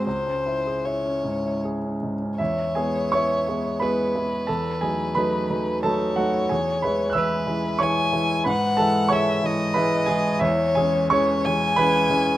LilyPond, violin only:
\new Staff \with { instrumentName = "Violin" } { \time 3/4 \key cis \minor \tempo 4 = 90 bis'4 cis''4 r4 | \key e \major cis''2 b'4~ | b'2 cis''4~ | cis''4 b'4 gis''4 |
fis''4 e''8 dis''4. | \key cis \minor cis''4 cis''8 gis''4. | }